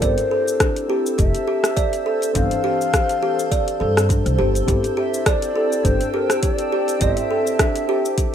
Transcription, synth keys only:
0.00 C4 E4 G4 A4
0.88 C4 E4 G4
0.92 A4
2.33 E3 C4 G4
2.37 C5
3.21 E3 C4 G4 A4
4.66 C4 E4 G4
4.70 A4
5.53 C4 E4 G4 A4
7.00 C4 E4 G4 C5
7.87 C4 E4 G4
7.91 A4

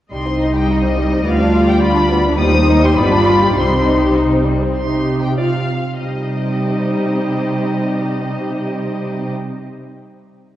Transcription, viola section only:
0.11 G3 D#4
1.26 F4
2.40 G3 D#4
2.99 F4
3.58 D#4
4.78 D#4 G4
5.38 F4
6.02 G3 D#4

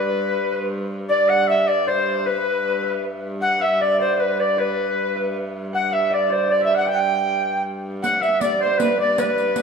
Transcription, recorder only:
Already playing: B4
1.08 D5
1.29 F#5
1.49 E5
1.68 D5
1.88 C5
2.26 B4
3.41 F#5
3.61 E5
3.81 D5
4.00 C5
4.20 B4
4.40 D5
4.60 B4
5.74 F#5
5.93 E5
6.13 D5
6.32 C5
6.51 D5
6.64 E5
6.77 F#5
6.89 G5
8.02 F#5
8.22 E5
8.41 D5
8.62 C5
8.80 B4
8.99 D5
9.18 B4

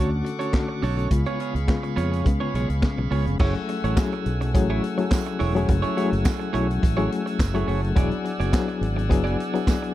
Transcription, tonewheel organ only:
Already playing: A4 F#5 C#6 D6
1.11 G#4 F5 B5
3.40 A3 F#5 G#5 E6
7.96 D5

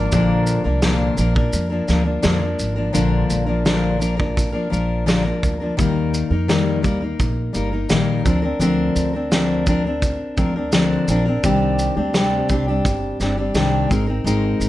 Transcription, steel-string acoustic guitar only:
Already playing: F3 A#3 D4 A#4
0.12 A#2 D3 F3 A#3 D4 A#4
0.64 F3 A#3 D4 A#4
0.82 A#2 D3 F3 A#3 D4 A#4
1.17 F3 A#3 D4 A#4
1.35 F3 A#3 D4 A#4
1.70 F3 A#3 D4 A#4
1.88 F3 A#3 D4 A#4
2.04 F3 A#3 D4 A#4
2.22 A#2 D3 F3 A#3 D4 A#4
2.39 F3 A#3 D4 A#4
2.76 F3 A#3 D4 A#4
2.93 A#2 D3 F3 A#3 D4 A#4
3.46 F3 A#3 D4 A#4
3.65 A#2 D3 F3 A#3 D4 A#4
3.99 F3 A#3 D4 A#4
4.17 F3 A#3 D4 A#4
4.52 F3 A#3 D4 A#4
4.70 F3 A#3 D4 A#4
5.06 A#2 D3 F3 A#3 D4 A#4
5.25 F3 A#3 D4 A#4
5.60 F3 A#3 D4 A#4
5.77 D#3 G3 A#3 D#4 A#4
6.31 A#3 D#4 A#4
6.48 D#3 G3 A#3 D#4 A#4
6.82 G3 A#3 D#4 A#4
7.01 A#3 D#4 A#4
7.53 G3 A#3 D#4 A#4
7.72 A#3 D#4 A#4
7.89 D#3 G3 A#3 D#4 A#4
8.25 F3 C4 D4 A#4
8.42 C4 D4 A#4
8.59 D3 F3 C4 D4 A#4
9.13 C4 D4 A#4
9.32 D3 F3 C4 D4 A#4
9.67 F3 C4 D4 A#4
9.85 C4 D4 A#4
10.37 F3 C4 D4 A#4
10.56 C4 D4 A#4
10.72 D3 F3 C4 D4 A#4
11.08 F3 C4 D4 A#4
11.25 C4 D4 A#4
11.43 C3 D#3 G3 C4 D4 G4
11.96 G3 C4 D4 G4
12.15 C3 G3 C4 D4 G4
12.50 G3 C4 D4 G4
12.68 G3 C4 D4 G4
13.20 G3 C4 D4 G4
13.37 G3 C4 D4 G4
13.54 C3 D#3 G3 C4 D4 G4
13.89 G#3 C4 D#4 A#4
14.07 C4 D#4 A#4
14.25 G#3 C4 D#4 A#4

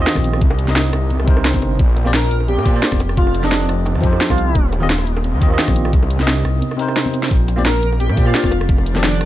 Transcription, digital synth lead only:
2.14 A#4
2.48 G4
3.17 F4
3.44 D4
4.30 F4
7.65 A#4
8.00 G4
8.26 F4
9.04 D4

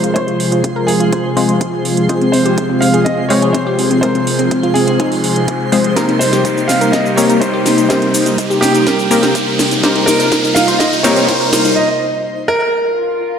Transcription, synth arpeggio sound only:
0.04 F4
0.16 C#5
0.28 F4
0.52 F4
0.64 F4
0.76 A#4
0.88 F4
1.00 F4
1.12 C5
2.09 G#4
2.21 C4
2.33 C4
2.46 G4
2.58 C4
2.70 C4
2.82 C4
2.94 G#4
3.06 C4
3.18 C4
3.30 C4
3.42 G#4
3.54 C4
3.67 G4
3.79 C4
3.91 C4
4.03 A#4
4.15 C4
4.39 C4
4.51 C4
4.63 F4
4.75 C4
4.88 C4
5.00 D#4
5.96 A#4
6.09 D#4
6.21 D#4
6.33 G4
6.45 D#4
6.57 D#4
6.69 D#4
6.81 A#4
7.05 D#4
7.17 D#4
7.30 A#4
7.41 D#4
7.54 G4
7.66 D#4
7.78 D#4
7.90 C5
8.02 D#4
8.26 D#4
8.38 D#4
8.50 G4
8.62 D#4
8.75 D#4
8.87 A#4
9.83 C5
9.95 D#4
10.08 D#4
10.20 A#4
10.32 D#4
10.44 D#4
10.56 D#4
10.68 C5
10.80 D#4
10.92 D#4
11.04 D#4
11.16 C5
11.29 D#4
11.41 A#4
11.53 D#4
11.65 D#4

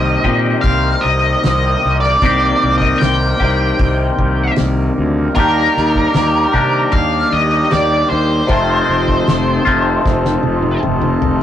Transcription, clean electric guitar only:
Already playing: C3 D#3 A#3 C4 G4
0.24 C3 D#3 A#3 C4 G4
2.23 C3 D#3 A#3 C4 G4
3.40 C3 D#3 A#3 C4 G4
5.36 D#3 A#3 D4 G4
6.53 D#3 A#3 D4 G4
8.47 F2 C3 D#3 A3 C4 F4
9.65 F2 C3 D#3 A3 C4 F4

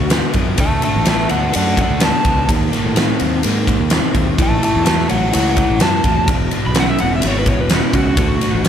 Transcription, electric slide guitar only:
Already playing: F#4
0.60 E5 A5
0.84 E5 A5
1.09 E5 A5
1.30 D5 F#5
1.55 D5 F#5
1.81 D5 F#5
2.04 A5
4.42 E5 A5
4.64 E5 A5
4.85 E5 A5
5.10 C#5 F#5
5.34 C#5 F#5
5.57 C#5 F#5
5.82 A5
6.66 B5
6.80 F#5
6.89 E5
7.00 F#5
7.16 E5
7.27 C#5
7.39 B4
7.49 C#5
7.61 B4
7.74 F#4
7.85 E4
7.95 F#4
8.18 F#4

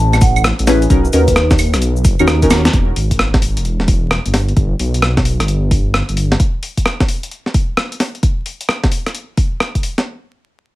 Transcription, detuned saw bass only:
Already playing: A1
0.59 A1
0.90 B1
1.13 D#2
1.74 B1
2.05 F#1
2.19 D#2
2.50 D#2
2.73 E1
2.96 G#1
3.57 E1
4.26 G1
4.57 G1
4.79 B1
5.40 G1
6.09 G1

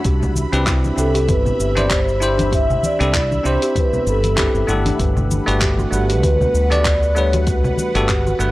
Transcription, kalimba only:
0.05 G4
0.67 E4
0.84 D4
1.14 G4
1.45 B3
1.90 G4
2.21 E4
2.38 D4
2.51 G4
3.14 E4
3.31 D4
3.62 G4
3.93 B3
4.37 G4
4.68 E4
4.86 D4
5.00 B4
5.62 G4
5.79 F#4
6.10 B4
6.41 B3
6.85 B4
7.17 G4
7.33 F#4
7.48 B4
8.09 G4
8.27 F#4

